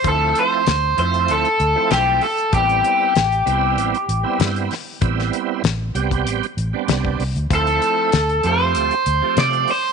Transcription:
<<
  \new Staff \with { instrumentName = "Overdriven electric guitar" } { \time 4/4 \key a \minor \tempo 4 = 96 a'8 c''4 c''8 a'4 g'8 a'8 | g'2. r4 | r1 | a'4. c''4. d''8 c''8 | }
  \new Staff \with { instrumentName = "Tonewheel organ" } { \time 4/4 \key a \minor <f a c' e'>4 r8 <f a c' e'>8. r8 <f a c' e'>8. r8 | <g b c' e'>4 r8 <g b c' e'>8. r8 <g b c' e'>8. r8 | <g b c' e'>4 r8 <g b c' g'>8. r8 <g b c' d'>8. r8 | <f a c' e'>4 r8 <f a c' g'>8. r8 <f a c' g'>8. r8 | }
  \new Staff \with { instrumentName = "Fingered electric bass" } { \clef bass \time 4/4 \key a \minor d,8 r8 d,8 f,8 d,16 r16 d,16 r16 b,,8 r8 | a,,8 r8 a,,8 c,8 a,,16 r16 a,,16 r16 g,8 r8 | a,,8 r8 a,,8 c,8 a,,16 r16 a,,16 r16 c,8 c,16 d,16 | d,8 r8 d,8 f,8 d,16 r16 d,16 r16 c8 r8 | }
  \new DrumStaff \with { instrumentName = "Drums" } \drummode { \time 4/4 <hh bd>8 hh8 <hh sn>8 hh16 hh16 hh16 hh16 hh8 <hh sn>8 hho16 hh16 | <hh bd>16 hh16 hh8 <hh sn>16 hh16 hh8 hh16 hh16 hh8 <hh sn>16 hh16 <hho sn>8 | <hh bd>16 sn16 hh8 <hh sn>8 hh16 <hh bd>16 hh16 hh16 hh8 <hh sn>16 bd16 hho16 hh16 | <hh bd>16 hh16 hh8 <hh sn>16 hh16 hh8 hh16 hh16 hh8 <hh sn>16 hh16 hho8 | }
>>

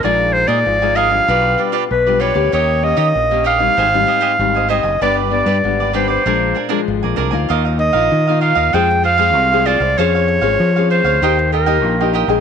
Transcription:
<<
  \new Staff \with { instrumentName = "Clarinet" } { \time 4/4 \key bes \mixolydian \tempo 4 = 97 d''8 c''16 d''8. f''4 r8 b'8 des''8 | des''8 ees''4 f''2 ees''8 | d''8 d''4 c''16 c''4 r4 r16 | \key ees \major r8 ees''4 f''8 g''8 f''4 d''8 |
des''4. c''4 bes'4 r8 | }
  \new Staff \with { instrumentName = "Cavaquinho" } { \time 4/4 \key bes \mixolydian <aes' bes' aes''>8. <aes' bes' ees'' aes''>16 r16 <bes' ees'' aes''>16 <aes' bes' ees'' aes''>16 <bes' ees'' aes''>16 <f' g' b' d''>8 <f' g' b' d''>16 <f' g' b' d''>16 r16 <g' b' d''>16 <f' g' b' d''>16 <g' b' d''>16 | <ees' g' des'' ees''>8. <ees' g' des'' ees''>16 r16 <g' des'' ees''>16 <ees' g' des'' ees''>16 <g' des'' ees''>16 <g' c'' ees'' aes''>8 <g' c'' ees'' aes''>16 <g' c'' ees'' aes''>16 r16 <c'' ees'' aes''>16 <g' c'' ees'' aes''>16 <c'' ees'' aes''>16 | <d' g' b' d''>8. <d' g' b' d''>16 r16 <g' b' d''>16 <d' g' b' d''>16 <g' b' d''>16 <d' bes' d'' aes''>8 <d' bes' d'' aes''>16 <d' bes' d'' aes''>16 r16 <bes' d'' aes''>16 <d' bes' d'' aes''>16 <bes' d'' aes''>16 | \key ees \major <f' bes' ees'' f''>16 <bes' ees'' f''>16 r16 <bes' ees'' f''>8 <bes' ees'' f''>16 <f' bes' ees'' f''>16 <bes' ees'' f''>16 <f' aes' c'' f''>16 r16 <f' aes' c'' f''>16 <aes' c'' f''>8 <aes' c'' f''>16 <f' aes' c'' f''>16 <aes' c'' f''>16 |
<f' c'' des'' f''>16 <c'' des'' f''>16 r16 <c'' des'' f''>8 <c'' des'' f''>16 <f' c'' des'' f''>16 <c'' des'' f''>16 <g' bes' ees'' g''>16 r16 <g' bes' ees'' g''>16 <bes' ees'' g''>8 <bes' ees'' g''>16 <g' bes' ees'' g''>16 <bes' ees'' g''>16 | }
  \new Staff \with { instrumentName = "Nylon-string guitar" } { \time 4/4 \key bes \mixolydian << { <aes ees' f'>8. <aes ees' f'>8 <aes ees' f'>8 <g d' f'>8. <g d' f'>8 r16 <g d' f'>8 <bes des' g'>16~ | <bes des' g'>8 <bes des' g'>8. <bes des' g'>8 <g c' ees'>8 <g c' ees'>8. <g c' ees'>8 <g c' ees'>8 | <g b d'>16 r16 <g b d'>16 r16 <g b d'>8 <g b d'>8 <f aes d'>8 r16 <f aes d'>4 <bes ees' f'>16~ | \key ees \major <bes ees' f'>8 r16 <bes ees' f'>8 <bes ees' f'>8. <aes c' aes'>8 r16 <aes c' aes'>8 <aes c' aes'>8. |
<des' aes'>8. <c' des' aes'>8 <c' des' aes'>8. <bes ees' g'>8. <bes ees' g'>8 <bes ees' g'>8 <aes c' aes'>16 | } \\ { bes,4 f4 b,4 b,4 | ees4 bes,4 aes,4 ees4 | g,4 d4 bes,4 f,4 | ees4 bes,4 f4 c4 |
f4 f4 ees4 bes,4 | } >> }
  \new Staff \with { instrumentName = "Fingered electric bass" } { \clef bass \time 4/4 \key bes \mixolydian bes,,8. bes,16 aes,,4 b,,8 r8 b,,8. d,16 | ees,8. ees16 bes,,4 aes,,8 r8 aes,,8. fis,,16 | g,,8. g,16 aes,,4 bes,,8 r8 aes,,16 bes,,16 c,16 d,16 | \key ees \major ees,8. bes,,16 ees8. ees,16 f,4 c,8. c,16 |
f,8. aes,,16 f8. d,16 ees,4 bes,,8. bes,,16 | }
>>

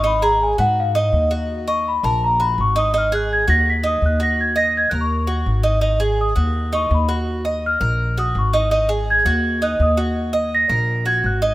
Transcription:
<<
  \new Staff \with { instrumentName = "Celesta" } { \time 4/4 \key ees \minor \tempo 4 = 166 ces'''8 bes''8 aes''8 ges''8 f''8 r4. | r8 des'''8 ces'''8 a''8 bes''8 ces'''8 des'''8 ees'''8 | f'''8 ges'''8 aes'''8 bes'''8 ces''''8 ees'''8 ges'''8 bes'''8 | aes'''8 bes'''8 \tuplet 3/2 { aes'''8 ges'''8 des'''8~ } des'''4 r4 |
r4 ees'''4. des'''8 ces'''8 r8 | r4 f'''4. ees'''8 des'''8 r8 | r4 aes'''4. ges'''8 ees'''8 r8 | r4 bes'''4. aes'''8 ges'''8 r8 | }
  \new Staff \with { instrumentName = "Cuban tres" } { \time 4/4 \key ees \minor ees'8 aes'4 ges'4 ees'4 ges'8~ | ges'8 ees''4 bes'4 ges'4 ees'8 | ees'8 aes'4 ges'4 ees'4 ges'8~ | ges'8 ees''4 bes'4 ges'4 ees'8 |
ees'8 aes'4 ges'4 ees'4 ges'8~ | ges'8 ees''4 bes'4 ges'4 ees'8 | ees'8 aes'4 ges'4 ees'4 ges'8~ | ges'8 ees''4 bes'4 ges'4 ees'8 | }
  \new Staff \with { instrumentName = "Upright bass" } { \clef bass \time 4/4 \key ees \minor aes,,4. aes,4. ees,4~ | ees,4. bes,,4. aes,,4~ | aes,,4. ees,4. ees,4~ | ees,4. ees,4. aes,,4~ |
aes,,4. ees,4. ees,4~ | ees,4. bes,,4. aes,,4~ | aes,,4. ees,4. ees,4~ | ees,4. bes,,4. aes,,4 | }
>>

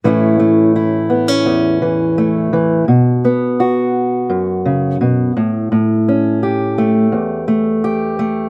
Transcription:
\new Staff \with { instrumentName = "Steel-string acoustic guitar" } { \time 4/4 \key a \mixolydian \tempo 4 = 85 << { <e a cis' e'>8 a8 e'8 b16 cis'4~ cis'16 a4 | r8 b8 fis'2~ fis'8 r8 | r8 cis'8 g'8 a4 a8 g'8 a8 | } \\ { a,2 e,8 e4 e8 | b,2 fis,8 cis8 b,8 a,8 | a,2 e,2 | } >> }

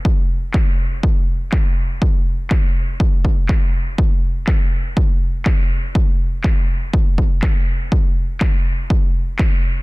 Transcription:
\new DrumStaff \with { instrumentName = "Drums" } \drummode { \time 4/4 \tempo 4 = 122 bd4 <hc bd>4 bd4 <hc bd>4 | bd4 <hc bd>4 bd8 bd8 <hc bd>4 | bd4 <hc bd>4 bd4 <hc bd>4 | bd4 <hc bd>4 bd8 bd8 <hc bd>4 |
bd4 <hc bd>4 bd4 <hc bd>4 | }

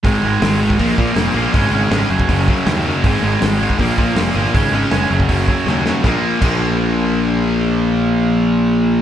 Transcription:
<<
  \new Staff \with { instrumentName = "Distorted electric guitar" } { \clef bass \time 4/4 \key bes \minor \tempo 4 = 160 <aes, ees aes>8 <aes, ees aes>8 <aes, ees aes>8 <aes, ees aes>8 <bes, f bes>8 <bes, f bes>8 <bes, f bes>8 <bes, f bes>8 | <des aes des'>8 <des aes des'>8 <des aes des'>8 <ges, des ges>8 <ges, des ges>8 <ges, des ges>8 <ges, des ges>8 <ges, des ges>8 | <aes, ees aes>8 <aes, ees aes>8 <aes, ees aes>8 <aes, ees aes>8 <bes, f bes>8 <bes, f bes>8 <bes, f bes>8 <bes, f bes>8 | <des aes des'>8 <des aes des'>8 <des aes des'>8 <ges, des ges>8 <ges, des ges>8 <ges, des ges>8 <ges, des ges>8 <ges, des ges>8 |
<bes, f bes>8 r8 <bes, f bes>2.~ | <bes, f bes>1 | }
  \new Staff \with { instrumentName = "Distorted electric guitar" } { \clef bass \time 4/4 \key bes \minor <aes, ees aes>8 <aes, ees aes>8 <aes, ees aes>8 <aes, ees aes>8 <bes, f bes>8 <bes, f bes>8 <bes, f bes>8 <bes, f bes>8 | <des aes des'>8 <des aes des'>8 <des aes des'>8 <ges, des ges>8 <ges, des ges>8 <ges, des ges>8 <ges, des ges>8 <ges, des ges>8 | <aes, ees aes>8 <aes, ees aes>8 <aes, ees aes>8 <aes, ees aes>8 <bes, f bes>8 <bes, f bes>8 <bes, f bes>8 <bes, f bes>8 | <des aes des'>8 <des aes des'>8 <des aes des'>8 <ges, des ges>8 <ges, des ges>8 <ges, des ges>8 <ges, des ges>8 <ges, des ges>8 |
<bes, f bes>8 r8 <bes, f bes>2.~ | <bes, f bes>1 | }
  \new Staff \with { instrumentName = "Distorted electric guitar" } { \clef bass \time 4/4 \key bes \minor <aes, ees aes>8 <aes, ees aes>8 <aes, ees aes>8 <aes, ees aes>8 <bes, f bes>8 <bes, f bes>8 <bes, f bes>8 <bes, f bes>8 | <des aes des'>8 <des aes des'>8 <des aes des'>8 <ges, des ges>8 <ges, des ges>8 <ges, des ges>8 <ges, des ges>8 <ges, des ges>8 | <aes, ees aes>8 <aes, ees aes>8 <aes, ees aes>8 <aes, ees aes>8 <bes, f bes>8 <bes, f bes>8 <bes, f bes>8 <bes, f bes>8 | <des aes des'>8 <des aes des'>8 <des aes des'>8 <ges, des ges>8 <ges, des ges>8 <ges, des ges>8 <ges, des ges>8 <ges, des ges>8 |
<bes, f bes>8 r8 <bes, f bes>2.~ | <bes, f bes>1 | }
  \new Staff \with { instrumentName = "Picked electric bass" } { \clef bass \time 4/4 \key bes \minor aes,,8 aes,,8 aes,,4 bes,,8 bes,8 f,,8 bes,,8 | aes,,8 aes,,8 aes,,8 ges,,8 ges,,4 ees,4 | aes,,8 aes,,8 aes,,4 bes,,8 bes,8 f,,8 g,,8 | aes,,8 aes,,8 f,,8 ges,,8 ges,,4 ees,4 |
bes,,8 r8 bes,,2.~ | bes,,1 | }
  \new DrumStaff \with { instrumentName = "Drums" } \drummode { \time 4/4 <hho bd>4 <hho sn>8. bd16 <hho bd>8 bd8 <hho sn>4 | <hho bd>4 <hho sn>8. bd16 <hho bd>8 bd8 <hho sn>4 | <hho bd>4 <hho sn>8. bd16 <hho bd>8 bd8 <hho sn>4 | <hho bd>4 <hho sn>8. bd16 <hho bd>8 bd8 sn8 sn8 |
<bd sn>4 <cymc bd>4 r4 r4 | r4 r4 r4 r4 | }
>>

